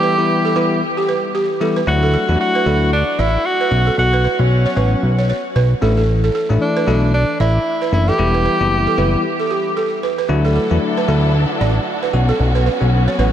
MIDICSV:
0, 0, Header, 1, 6, 480
1, 0, Start_track
1, 0, Key_signature, 2, "major"
1, 0, Tempo, 526316
1, 1706, Time_signature, 4, 2, 24, 8
1, 12152, End_track
2, 0, Start_track
2, 0, Title_t, "Balafon"
2, 0, Program_c, 0, 12
2, 28, Note_on_c, 0, 71, 82
2, 110, Note_off_c, 0, 71, 0
2, 408, Note_on_c, 0, 69, 74
2, 467, Note_off_c, 0, 69, 0
2, 509, Note_on_c, 0, 71, 75
2, 590, Note_off_c, 0, 71, 0
2, 887, Note_on_c, 0, 67, 75
2, 946, Note_off_c, 0, 67, 0
2, 989, Note_on_c, 0, 71, 76
2, 1070, Note_off_c, 0, 71, 0
2, 1229, Note_on_c, 0, 67, 83
2, 1310, Note_off_c, 0, 67, 0
2, 1470, Note_on_c, 0, 69, 78
2, 1551, Note_off_c, 0, 69, 0
2, 1608, Note_on_c, 0, 71, 85
2, 1667, Note_off_c, 0, 71, 0
2, 1849, Note_on_c, 0, 69, 80
2, 1908, Note_off_c, 0, 69, 0
2, 1948, Note_on_c, 0, 69, 86
2, 2030, Note_off_c, 0, 69, 0
2, 2328, Note_on_c, 0, 71, 79
2, 2386, Note_off_c, 0, 71, 0
2, 2428, Note_on_c, 0, 69, 76
2, 2510, Note_off_c, 0, 69, 0
2, 2908, Note_on_c, 0, 74, 81
2, 2990, Note_off_c, 0, 74, 0
2, 3288, Note_on_c, 0, 71, 69
2, 3347, Note_off_c, 0, 71, 0
2, 3528, Note_on_c, 0, 69, 78
2, 3587, Note_off_c, 0, 69, 0
2, 3769, Note_on_c, 0, 71, 76
2, 3827, Note_off_c, 0, 71, 0
2, 3870, Note_on_c, 0, 71, 81
2, 3951, Note_off_c, 0, 71, 0
2, 4248, Note_on_c, 0, 73, 78
2, 4307, Note_off_c, 0, 73, 0
2, 4348, Note_on_c, 0, 71, 78
2, 4430, Note_off_c, 0, 71, 0
2, 4729, Note_on_c, 0, 73, 74
2, 4787, Note_off_c, 0, 73, 0
2, 4830, Note_on_c, 0, 73, 78
2, 4910, Note_off_c, 0, 73, 0
2, 5069, Note_on_c, 0, 71, 88
2, 5150, Note_off_c, 0, 71, 0
2, 5309, Note_on_c, 0, 69, 80
2, 5390, Note_off_c, 0, 69, 0
2, 5449, Note_on_c, 0, 69, 83
2, 5507, Note_off_c, 0, 69, 0
2, 5689, Note_on_c, 0, 69, 79
2, 5747, Note_off_c, 0, 69, 0
2, 5790, Note_on_c, 0, 69, 85
2, 5871, Note_off_c, 0, 69, 0
2, 6170, Note_on_c, 0, 71, 84
2, 6228, Note_off_c, 0, 71, 0
2, 6269, Note_on_c, 0, 69, 82
2, 6350, Note_off_c, 0, 69, 0
2, 6749, Note_on_c, 0, 74, 81
2, 6830, Note_off_c, 0, 74, 0
2, 7128, Note_on_c, 0, 71, 71
2, 7187, Note_off_c, 0, 71, 0
2, 7369, Note_on_c, 0, 69, 74
2, 7427, Note_off_c, 0, 69, 0
2, 7608, Note_on_c, 0, 71, 73
2, 7667, Note_off_c, 0, 71, 0
2, 7709, Note_on_c, 0, 71, 84
2, 7790, Note_off_c, 0, 71, 0
2, 8089, Note_on_c, 0, 69, 74
2, 8188, Note_off_c, 0, 69, 0
2, 8189, Note_on_c, 0, 71, 81
2, 8270, Note_off_c, 0, 71, 0
2, 8568, Note_on_c, 0, 69, 76
2, 8627, Note_off_c, 0, 69, 0
2, 8670, Note_on_c, 0, 67, 74
2, 8750, Note_off_c, 0, 67, 0
2, 8909, Note_on_c, 0, 69, 84
2, 8990, Note_off_c, 0, 69, 0
2, 9149, Note_on_c, 0, 71, 77
2, 9230, Note_off_c, 0, 71, 0
2, 9288, Note_on_c, 0, 71, 83
2, 9346, Note_off_c, 0, 71, 0
2, 9528, Note_on_c, 0, 69, 83
2, 9586, Note_off_c, 0, 69, 0
2, 9628, Note_on_c, 0, 69, 84
2, 9710, Note_off_c, 0, 69, 0
2, 10008, Note_on_c, 0, 71, 81
2, 10066, Note_off_c, 0, 71, 0
2, 10109, Note_on_c, 0, 69, 82
2, 10190, Note_off_c, 0, 69, 0
2, 10589, Note_on_c, 0, 74, 82
2, 10670, Note_off_c, 0, 74, 0
2, 10968, Note_on_c, 0, 71, 72
2, 11027, Note_off_c, 0, 71, 0
2, 11207, Note_on_c, 0, 69, 81
2, 11266, Note_off_c, 0, 69, 0
2, 11447, Note_on_c, 0, 71, 77
2, 11506, Note_off_c, 0, 71, 0
2, 11548, Note_on_c, 0, 71, 80
2, 11629, Note_off_c, 0, 71, 0
2, 11928, Note_on_c, 0, 73, 76
2, 11986, Note_off_c, 0, 73, 0
2, 12029, Note_on_c, 0, 71, 78
2, 12110, Note_off_c, 0, 71, 0
2, 12152, End_track
3, 0, Start_track
3, 0, Title_t, "Tenor saxophone"
3, 0, Program_c, 1, 66
3, 0, Note_on_c, 1, 67, 110
3, 1091, Note_off_c, 1, 67, 0
3, 1714, Note_on_c, 1, 66, 102
3, 2157, Note_off_c, 1, 66, 0
3, 2194, Note_on_c, 1, 66, 105
3, 2637, Note_off_c, 1, 66, 0
3, 2672, Note_on_c, 1, 62, 94
3, 2912, Note_on_c, 1, 64, 97
3, 2926, Note_off_c, 1, 62, 0
3, 3151, Note_on_c, 1, 66, 103
3, 3165, Note_off_c, 1, 64, 0
3, 3629, Note_off_c, 1, 66, 0
3, 3633, Note_on_c, 1, 66, 97
3, 4012, Note_on_c, 1, 61, 80
3, 4025, Note_off_c, 1, 66, 0
3, 4729, Note_off_c, 1, 61, 0
3, 6033, Note_on_c, 1, 62, 85
3, 6476, Note_off_c, 1, 62, 0
3, 6513, Note_on_c, 1, 62, 93
3, 6733, Note_off_c, 1, 62, 0
3, 6752, Note_on_c, 1, 64, 102
3, 7196, Note_off_c, 1, 64, 0
3, 7234, Note_on_c, 1, 64, 97
3, 7373, Note_on_c, 1, 67, 115
3, 7387, Note_off_c, 1, 64, 0
3, 8809, Note_off_c, 1, 67, 0
3, 12152, End_track
4, 0, Start_track
4, 0, Title_t, "String section"
4, 0, Program_c, 2, 48
4, 9385, Note_on_c, 2, 50, 71
4, 9385, Note_on_c, 2, 62, 68
4, 9385, Note_on_c, 2, 66, 68
4, 9386, Note_on_c, 2, 64, 71
4, 9386, Note_on_c, 2, 69, 84
4, 11049, Note_off_c, 2, 50, 0
4, 11049, Note_off_c, 2, 62, 0
4, 11049, Note_off_c, 2, 64, 0
4, 11050, Note_off_c, 2, 69, 0
4, 11066, Note_on_c, 2, 59, 71
4, 11066, Note_on_c, 2, 61, 71
4, 12152, Note_off_c, 2, 59, 0
4, 12152, Note_off_c, 2, 61, 0
4, 12152, Note_off_c, 2, 66, 0
4, 12152, End_track
5, 0, Start_track
5, 0, Title_t, "Tine electric piano"
5, 0, Program_c, 3, 4
5, 0, Note_on_c, 3, 52, 89
5, 0, Note_on_c, 3, 55, 83
5, 0, Note_on_c, 3, 59, 84
5, 0, Note_on_c, 3, 64, 99
5, 131, Note_off_c, 3, 52, 0
5, 132, Note_off_c, 3, 55, 0
5, 133, Note_off_c, 3, 59, 0
5, 134, Note_off_c, 3, 64, 0
5, 162, Note_on_c, 3, 52, 73
5, 164, Note_on_c, 3, 55, 70
5, 167, Note_on_c, 3, 59, 67
5, 168, Note_on_c, 3, 64, 79
5, 481, Note_off_c, 3, 52, 0
5, 482, Note_off_c, 3, 55, 0
5, 483, Note_off_c, 3, 59, 0
5, 484, Note_off_c, 3, 64, 0
5, 506, Note_on_c, 3, 52, 75
5, 508, Note_on_c, 3, 55, 66
5, 510, Note_on_c, 3, 59, 69
5, 512, Note_on_c, 3, 64, 83
5, 730, Note_off_c, 3, 52, 0
5, 731, Note_off_c, 3, 55, 0
5, 732, Note_off_c, 3, 59, 0
5, 733, Note_off_c, 3, 64, 0
5, 1464, Note_on_c, 3, 52, 75
5, 1466, Note_on_c, 3, 55, 67
5, 1467, Note_on_c, 3, 59, 70
5, 1469, Note_on_c, 3, 64, 82
5, 1647, Note_off_c, 3, 52, 0
5, 1648, Note_off_c, 3, 55, 0
5, 1649, Note_off_c, 3, 59, 0
5, 1650, Note_off_c, 3, 64, 0
5, 1704, Note_on_c, 3, 54, 93
5, 1705, Note_on_c, 3, 57, 80
5, 1707, Note_on_c, 3, 62, 82
5, 1709, Note_on_c, 3, 64, 99
5, 2051, Note_off_c, 3, 54, 0
5, 2052, Note_off_c, 3, 57, 0
5, 2053, Note_off_c, 3, 62, 0
5, 2053, Note_off_c, 3, 64, 0
5, 2082, Note_on_c, 3, 54, 73
5, 2084, Note_on_c, 3, 57, 66
5, 2085, Note_on_c, 3, 62, 68
5, 2087, Note_on_c, 3, 64, 81
5, 2400, Note_off_c, 3, 54, 0
5, 2401, Note_off_c, 3, 57, 0
5, 2402, Note_off_c, 3, 62, 0
5, 2403, Note_off_c, 3, 64, 0
5, 2424, Note_on_c, 3, 54, 76
5, 2425, Note_on_c, 3, 57, 69
5, 2427, Note_on_c, 3, 62, 69
5, 2429, Note_on_c, 3, 64, 81
5, 2649, Note_off_c, 3, 54, 0
5, 2649, Note_off_c, 3, 57, 0
5, 2651, Note_off_c, 3, 62, 0
5, 2651, Note_off_c, 3, 64, 0
5, 3381, Note_on_c, 3, 54, 74
5, 3383, Note_on_c, 3, 59, 68
5, 3385, Note_on_c, 3, 61, 67
5, 3386, Note_on_c, 3, 66, 82
5, 3566, Note_off_c, 3, 54, 0
5, 3567, Note_off_c, 3, 59, 0
5, 3568, Note_off_c, 3, 61, 0
5, 3568, Note_off_c, 3, 66, 0
5, 4003, Note_on_c, 3, 54, 72
5, 4005, Note_on_c, 3, 59, 68
5, 4006, Note_on_c, 3, 61, 69
5, 4008, Note_on_c, 3, 66, 80
5, 4321, Note_off_c, 3, 54, 0
5, 4322, Note_off_c, 3, 59, 0
5, 4323, Note_off_c, 3, 61, 0
5, 4324, Note_off_c, 3, 66, 0
5, 4343, Note_on_c, 3, 54, 77
5, 4345, Note_on_c, 3, 59, 66
5, 4347, Note_on_c, 3, 61, 70
5, 4349, Note_on_c, 3, 66, 80
5, 4569, Note_off_c, 3, 54, 0
5, 4570, Note_off_c, 3, 59, 0
5, 4570, Note_off_c, 3, 61, 0
5, 4571, Note_off_c, 3, 66, 0
5, 5302, Note_on_c, 3, 52, 76
5, 5304, Note_on_c, 3, 57, 70
5, 5306, Note_on_c, 3, 62, 68
5, 5308, Note_on_c, 3, 64, 80
5, 5486, Note_off_c, 3, 52, 0
5, 5488, Note_off_c, 3, 57, 0
5, 5488, Note_off_c, 3, 62, 0
5, 5489, Note_off_c, 3, 64, 0
5, 5923, Note_on_c, 3, 52, 77
5, 5925, Note_on_c, 3, 57, 70
5, 5927, Note_on_c, 3, 62, 71
5, 5929, Note_on_c, 3, 64, 82
5, 6241, Note_off_c, 3, 52, 0
5, 6242, Note_off_c, 3, 57, 0
5, 6243, Note_off_c, 3, 62, 0
5, 6244, Note_off_c, 3, 64, 0
5, 6264, Note_on_c, 3, 52, 75
5, 6265, Note_on_c, 3, 57, 69
5, 6267, Note_on_c, 3, 62, 68
5, 6270, Note_on_c, 3, 64, 86
5, 6489, Note_off_c, 3, 52, 0
5, 6490, Note_off_c, 3, 57, 0
5, 6491, Note_off_c, 3, 62, 0
5, 6492, Note_off_c, 3, 64, 0
5, 7224, Note_on_c, 3, 52, 72
5, 7226, Note_on_c, 3, 57, 67
5, 7228, Note_on_c, 3, 62, 67
5, 7229, Note_on_c, 3, 64, 79
5, 7407, Note_off_c, 3, 52, 0
5, 7408, Note_off_c, 3, 57, 0
5, 7409, Note_off_c, 3, 62, 0
5, 7410, Note_off_c, 3, 64, 0
5, 7465, Note_on_c, 3, 52, 91
5, 7467, Note_on_c, 3, 55, 83
5, 7468, Note_on_c, 3, 59, 82
5, 7470, Note_on_c, 3, 64, 102
5, 7811, Note_off_c, 3, 52, 0
5, 7812, Note_off_c, 3, 55, 0
5, 7813, Note_off_c, 3, 59, 0
5, 7814, Note_off_c, 3, 64, 0
5, 7843, Note_on_c, 3, 52, 73
5, 7845, Note_on_c, 3, 55, 65
5, 7846, Note_on_c, 3, 59, 66
5, 7849, Note_on_c, 3, 64, 81
5, 8161, Note_off_c, 3, 52, 0
5, 8162, Note_off_c, 3, 55, 0
5, 8163, Note_off_c, 3, 59, 0
5, 8164, Note_off_c, 3, 64, 0
5, 8184, Note_on_c, 3, 52, 72
5, 8185, Note_on_c, 3, 55, 67
5, 8187, Note_on_c, 3, 59, 66
5, 8189, Note_on_c, 3, 64, 83
5, 8409, Note_off_c, 3, 52, 0
5, 8409, Note_off_c, 3, 55, 0
5, 8411, Note_off_c, 3, 59, 0
5, 8411, Note_off_c, 3, 64, 0
5, 9382, Note_on_c, 3, 54, 93
5, 9383, Note_on_c, 3, 57, 84
5, 9386, Note_on_c, 3, 62, 83
5, 9387, Note_on_c, 3, 64, 99
5, 9730, Note_off_c, 3, 54, 0
5, 9731, Note_off_c, 3, 57, 0
5, 9732, Note_off_c, 3, 62, 0
5, 9732, Note_off_c, 3, 64, 0
5, 9760, Note_on_c, 3, 54, 76
5, 9763, Note_on_c, 3, 57, 69
5, 9764, Note_on_c, 3, 62, 69
5, 9766, Note_on_c, 3, 64, 79
5, 10080, Note_off_c, 3, 54, 0
5, 10081, Note_off_c, 3, 57, 0
5, 10081, Note_off_c, 3, 62, 0
5, 10082, Note_off_c, 3, 64, 0
5, 10103, Note_on_c, 3, 54, 75
5, 10104, Note_on_c, 3, 57, 68
5, 10107, Note_on_c, 3, 62, 67
5, 10108, Note_on_c, 3, 64, 87
5, 10328, Note_off_c, 3, 54, 0
5, 10329, Note_off_c, 3, 57, 0
5, 10330, Note_off_c, 3, 62, 0
5, 10331, Note_off_c, 3, 64, 0
5, 11062, Note_on_c, 3, 54, 75
5, 11064, Note_on_c, 3, 59, 68
5, 11066, Note_on_c, 3, 61, 70
5, 11067, Note_on_c, 3, 66, 86
5, 11246, Note_off_c, 3, 54, 0
5, 11247, Note_off_c, 3, 59, 0
5, 11248, Note_off_c, 3, 61, 0
5, 11249, Note_off_c, 3, 66, 0
5, 11680, Note_on_c, 3, 54, 76
5, 11682, Note_on_c, 3, 59, 69
5, 11684, Note_on_c, 3, 61, 71
5, 11685, Note_on_c, 3, 66, 82
5, 11999, Note_off_c, 3, 54, 0
5, 12000, Note_off_c, 3, 59, 0
5, 12001, Note_off_c, 3, 61, 0
5, 12002, Note_off_c, 3, 66, 0
5, 12023, Note_on_c, 3, 54, 73
5, 12024, Note_on_c, 3, 59, 70
5, 12027, Note_on_c, 3, 61, 68
5, 12028, Note_on_c, 3, 66, 82
5, 12152, Note_off_c, 3, 54, 0
5, 12152, Note_off_c, 3, 59, 0
5, 12152, Note_off_c, 3, 61, 0
5, 12152, Note_off_c, 3, 66, 0
5, 12152, End_track
6, 0, Start_track
6, 0, Title_t, "Analog synth bass"
6, 0, Program_c, 4, 38
6, 1706, Note_on_c, 4, 38, 101
6, 1977, Note_off_c, 4, 38, 0
6, 2085, Note_on_c, 4, 40, 89
6, 2157, Note_off_c, 4, 40, 0
6, 2425, Note_on_c, 4, 38, 94
6, 2768, Note_off_c, 4, 38, 0
6, 2906, Note_on_c, 4, 33, 93
6, 3078, Note_off_c, 4, 33, 0
6, 3386, Note_on_c, 4, 35, 91
6, 3558, Note_off_c, 4, 35, 0
6, 3627, Note_on_c, 4, 35, 104
6, 3898, Note_off_c, 4, 35, 0
6, 4005, Note_on_c, 4, 35, 90
6, 4249, Note_off_c, 4, 35, 0
6, 4346, Note_on_c, 4, 33, 99
6, 4517, Note_off_c, 4, 33, 0
6, 4586, Note_on_c, 4, 35, 99
6, 4857, Note_off_c, 4, 35, 0
6, 5066, Note_on_c, 4, 35, 85
6, 5238, Note_off_c, 4, 35, 0
6, 5306, Note_on_c, 4, 33, 94
6, 5748, Note_off_c, 4, 33, 0
6, 5926, Note_on_c, 4, 33, 94
6, 5998, Note_off_c, 4, 33, 0
6, 6267, Note_on_c, 4, 35, 86
6, 6609, Note_off_c, 4, 35, 0
6, 6748, Note_on_c, 4, 33, 103
6, 6919, Note_off_c, 4, 33, 0
6, 7227, Note_on_c, 4, 30, 98
6, 7398, Note_off_c, 4, 30, 0
6, 7467, Note_on_c, 4, 28, 102
6, 7738, Note_off_c, 4, 28, 0
6, 7846, Note_on_c, 4, 30, 88
6, 8089, Note_off_c, 4, 30, 0
6, 8186, Note_on_c, 4, 30, 90
6, 8358, Note_off_c, 4, 30, 0
6, 9385, Note_on_c, 4, 38, 101
6, 9656, Note_off_c, 4, 38, 0
6, 9764, Note_on_c, 4, 40, 93
6, 9837, Note_off_c, 4, 40, 0
6, 10104, Note_on_c, 4, 38, 98
6, 10448, Note_off_c, 4, 38, 0
6, 10585, Note_on_c, 4, 33, 92
6, 10757, Note_off_c, 4, 33, 0
6, 11065, Note_on_c, 4, 35, 94
6, 11237, Note_off_c, 4, 35, 0
6, 11304, Note_on_c, 4, 35, 102
6, 11576, Note_off_c, 4, 35, 0
6, 11684, Note_on_c, 4, 35, 94
6, 11928, Note_off_c, 4, 35, 0
6, 12024, Note_on_c, 4, 33, 99
6, 12152, Note_off_c, 4, 33, 0
6, 12152, End_track
0, 0, End_of_file